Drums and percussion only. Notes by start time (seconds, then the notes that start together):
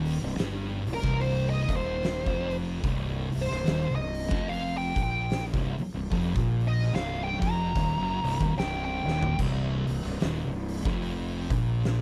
0.05 open hi-hat
0.38 snare, open hi-hat
0.87 open hi-hat
1.04 kick, snare
1.21 open hi-hat
1.69 kick, open hi-hat
2.03 snare, open hi-hat
2.26 kick
2.50 open hi-hat
2.84 kick, open hi-hat
3.32 open hi-hat
3.51 snare
3.66 snare, open hi-hat
4.14 open hi-hat
4.31 kick, snare
4.49 open hi-hat
4.96 kick, open hi-hat
5.30 snare, open hi-hat
5.54 kick
5.78 open hi-hat
6.12 kick, open hi-hat
6.36 kick
6.60 open hi-hat
6.79 snare
6.94 snare, open hi-hat
7.42 kick, open hi-hat
7.76 kick, open hi-hat
8.24 open hi-hat
8.41 kick
8.58 snare, open hi-hat
9.08 snare
9.23 floor tom
9.39 kick, crash
9.87 open hi-hat
10.05 snare
10.20 snare, open hi-hat
10.69 open hi-hat
10.85 kick, snare
11.02 open hi-hat
11.50 kick, open hi-hat
11.83 snare, open hi-hat